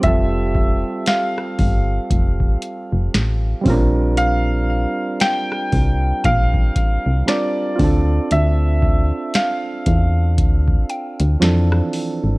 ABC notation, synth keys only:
X:1
M:4/4
L:1/8
Q:"Swing 16ths" 1/4=58
K:Dm
V:1 name="Synth keys"
[G,CFGA]6- [G,CFGA] [G,C^CDFB]- | [G,C^CDFB]6 [G,=CDFB] [CDFA]- | [CDFA]6 [E,F,CDA]2 |]